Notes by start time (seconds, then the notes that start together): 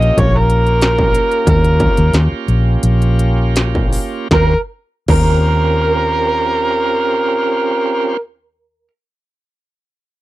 Already playing: A#3 C#4 F4 G4 D#5
0.02 closed hi-hat
0.17 A#1 C#5, kick, closed hi-hat
0.37 A#4
0.50 closed hi-hat
0.67 closed hi-hat
0.81 snare, closed hi-hat
0.98 kick
1.15 closed hi-hat
1.31 closed hi-hat
1.47 D#2 A#4, kick, closed hi-hat
1.65 closed hi-hat
1.80 kick, closed hi-hat
1.97 D#2, closed hi-hat
2.13 D#2, snare, closed hi-hat
2.32 muted fingered electric bass stroke
2.48 A#1, closed hi-hat
2.83 A#1, closed hi-hat
3.02 closed hi-hat
3.19 closed hi-hat
3.56 snare, closed hi-hat
3.75 kick
3.93 open hi-hat
4.31 D#2 C4 C#4 F4 G4 A#4, kick, snare
5.08 D#2 C4 C#4 F4 G4 A#4, kick, crash
5.12 A#4